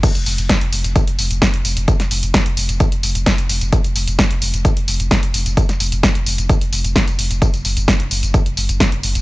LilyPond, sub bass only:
\new Staff \with { instrumentName = "Sub bass" } { \clef bass \time 4/4 \key ges \lydian \tempo 4 = 130 r16 f,,16 f,,16 f,,16 r16 f,,16 f,,16 f,,16 r16 f,,16 f,,16 f,,16 r16 f,,16 f,,16 f,,16 | r16 f,,16 f,,16 f,,16 r16 f,,16 f,,16 f,,16 r16 f,,16 f,,16 f,,16 r16 f,,16 f,,16 f,,16 | r16 f,,16 f,,16 f,,16 r16 f,,16 f,,16 f,,16 r16 f,,16 f,,16 f,,16 r16 f,,16 f,,16 f,,16 | r16 f,,16 f,,16 f,,16 r16 f,,16 f,,16 f,,16 r16 f,,16 f,,16 f,,16 r16 f,,16 f,,16 f,,16 |
r16 ges,,16 ges,,16 ges,,16 r16 ges,,16 ges,,16 ges,,16 r16 ges,,16 ges,,16 ges,,16 r16 ges,,16 ges,,16 ges,,16 | }